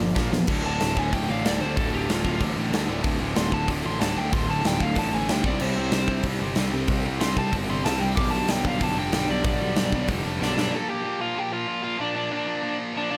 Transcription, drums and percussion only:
0.16 kick loud
0.16 snare medium
0.33 snare medium
0.47 kick loud
0.47 crash loud
0.80 snare loud
0.80 open hi-hat medium
0.97 kick medium
1.13 kick medium
1.13 open hi-hat medium
1.45 snare loud
1.45 open hi-hat medium
1.77 kick loud
1.77 open hi-hat medium
2.09 snare loud
2.09 open hi-hat medium
2.25 kick medium
2.41 kick loud
2.41 open hi-hat medium
2.73 snare loud
2.73 open hi-hat medium
3.04 kick loud
3.04 open hi-hat medium
3.36 snare loud
3.36 open hi-hat medium
3.52 kick medium
3.68 kick loud
3.68 open hi-hat medium
4.01 snare loud
4.01 open hi-hat medium
4.33 kick loud
4.33 open hi-hat medium
4.65 snare loud
4.65 open hi-hat medium
4.80 kick medium
4.95 kick medium
4.95 open hi-hat medium
5.29 snare loud
5.29 open hi-hat medium
5.44 kick loud
5.60 crash loud
5.91 snare loud
5.91 open hi-hat medium
6.08 kick medium
6.23 kick medium
6.23 open hi-hat medium
6.55 snare loud
6.55 open hi-hat medium
6.88 kick loud
6.88 open hi-hat medium
7.21 snare loud
7.21 open hi-hat medium
7.37 kick medium
7.53 kick loud
7.53 open hi-hat medium
7.85 snare loud
7.85 open hi-hat medium
8.17 kick loud
8.17 open hi-hat medium
8.48 snare loud
8.48 open hi-hat medium
8.65 kick loud
8.81 kick loud
8.81 open hi-hat medium
9.12 snare loud
9.12 open hi-hat medium
9.44 kick loud
9.44 open hi-hat medium
9.76 snare loud
9.76 open hi-hat medium
9.92 kick medium
10.08 kick loud
10.08 open hi-hat medium
10.42 snare medium
10.58 snare medium

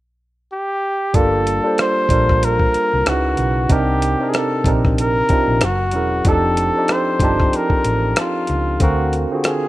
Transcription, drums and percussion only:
1.14 kick loud
1.14 closed hi-hat medium
1.47 closed hi-hat medium
1.78 cross-stick loud
1.78 closed hi-hat medium
2.09 kick medium
2.09 closed hi-hat medium
2.29 kick medium
2.29 cross-stick soft
2.43 closed hi-hat medium
2.59 kick medium
2.74 closed hi-hat medium
3.06 cross-stick loud
3.06 closed hi-hat medium
3.37 closed hi-hat medium
3.70 kick loud
3.70 closed hi-hat medium
4.02 closed hi-hat medium
4.34 cross-stick loud
4.34 closed hi-hat medium
4.64 kick medium
4.64 closed hi-hat medium
4.85 kick medium
4.85 cross-stick soft
4.98 closed hi-hat medium
5.29 kick medium
5.29 closed hi-hat medium
5.61 cross-stick loud
5.61 closed hi-hat medium
5.91 closed hi-hat medium
6.25 kick medium
6.25 closed hi-hat medium
6.57 closed hi-hat medium
6.88 cross-stick medium
6.88 closed hi-hat medium
7.20 kick medium
7.20 closed hi-hat medium
7.40 kick medium
7.40 cross-stick soft
7.53 closed hi-hat medium
7.70 kick medium
7.84 closed hi-hat medium
8.16 cross-stick loud
8.16 closed hi-hat medium
8.47 closed hi-hat medium
8.80 kick medium
8.80 closed hi-hat medium
9.13 closed hi-hat medium
9.44 cross-stick loud
9.44 closed hi-hat medium

